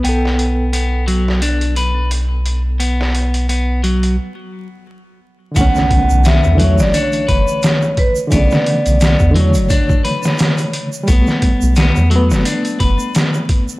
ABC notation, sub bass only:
X:1
M:4/4
L:1/16
Q:"Swing 16ths" 1/4=87
K:Bm
V:1 name="Sub bass" clef=bass
B,,,16- | B,,,8 z8 | B,,, z2 B,,,2 E,,2 F,,, z2 F,,, z4 z | B,,, z2 B,,,2 E,,2 F,,, z8 |
B,,, z2 B,,,2 E,,2 F,,, z2 F,,, z4 z |]